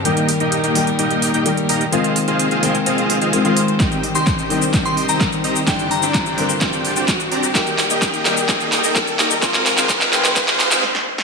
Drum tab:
HH |xxoxxxoxxxoxxxox|xxoxxxoxxxoxxxox|xxoxxxoxxxoxxxox|xxoxxxoxxxoxxxox|
SH |----------------|----------------|xx-xxx-xxx-xxx-x|xx-xxx-xxx-xxx-x|
CP |----------------|----------------|x---x---x---x---|x---x---x---x---|
SD |----------------|----------------|----------------|----------------|
BD |----------------|----------------|o---o---o---o---|o---o---o---o---|

HH |xxoxxxoxxxoxxxox|xxoxxxoxxxox----|
SH |xx-xxx-xxx-xxx-x|xx-xxx-xxx-x----|
CP |x-x-x-x-x-x-x-x-|xxxxxxxxxxxx----|
SD |----------------|------------oo-o|
BD |o---o---o---o---|o---o---o-------|